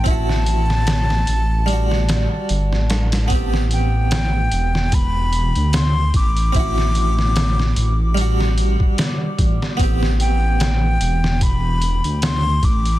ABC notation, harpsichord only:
X:1
M:4/4
L:1/8
Q:"Swing 16ths" 1/4=74
K:Ador
V:1 name="Harpsichord"
[CEF]4 [G,DF]4 | [B,CG]8 | [CEF]4 [G,DF]4 | [B,CG]8 |]